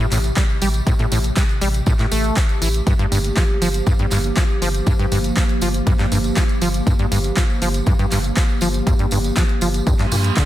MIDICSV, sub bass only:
0, 0, Header, 1, 2, 480
1, 0, Start_track
1, 0, Tempo, 500000
1, 833, Time_signature, 4, 2, 24, 8
1, 10035, End_track
2, 0, Start_track
2, 0, Title_t, "Sub bass"
2, 0, Program_c, 0, 38
2, 113, Note_on_c, 0, 33, 87
2, 295, Note_off_c, 0, 33, 0
2, 593, Note_on_c, 0, 33, 84
2, 775, Note_off_c, 0, 33, 0
2, 1072, Note_on_c, 0, 33, 97
2, 1255, Note_off_c, 0, 33, 0
2, 1552, Note_on_c, 0, 33, 90
2, 1735, Note_off_c, 0, 33, 0
2, 2031, Note_on_c, 0, 33, 89
2, 2215, Note_off_c, 0, 33, 0
2, 2512, Note_on_c, 0, 33, 82
2, 2695, Note_off_c, 0, 33, 0
2, 2992, Note_on_c, 0, 31, 94
2, 3175, Note_off_c, 0, 31, 0
2, 3473, Note_on_c, 0, 31, 90
2, 3655, Note_off_c, 0, 31, 0
2, 3953, Note_on_c, 0, 31, 90
2, 4135, Note_off_c, 0, 31, 0
2, 4432, Note_on_c, 0, 31, 80
2, 4615, Note_off_c, 0, 31, 0
2, 4912, Note_on_c, 0, 31, 97
2, 5095, Note_off_c, 0, 31, 0
2, 5392, Note_on_c, 0, 31, 88
2, 5575, Note_off_c, 0, 31, 0
2, 5873, Note_on_c, 0, 31, 85
2, 6055, Note_off_c, 0, 31, 0
2, 6353, Note_on_c, 0, 31, 82
2, 6536, Note_off_c, 0, 31, 0
2, 6832, Note_on_c, 0, 31, 96
2, 7015, Note_off_c, 0, 31, 0
2, 7313, Note_on_c, 0, 31, 89
2, 7495, Note_off_c, 0, 31, 0
2, 7793, Note_on_c, 0, 31, 85
2, 7975, Note_off_c, 0, 31, 0
2, 8274, Note_on_c, 0, 31, 85
2, 8456, Note_off_c, 0, 31, 0
2, 8753, Note_on_c, 0, 31, 100
2, 8935, Note_off_c, 0, 31, 0
2, 9232, Note_on_c, 0, 31, 92
2, 9415, Note_off_c, 0, 31, 0
2, 9712, Note_on_c, 0, 43, 84
2, 9895, Note_off_c, 0, 43, 0
2, 10035, End_track
0, 0, End_of_file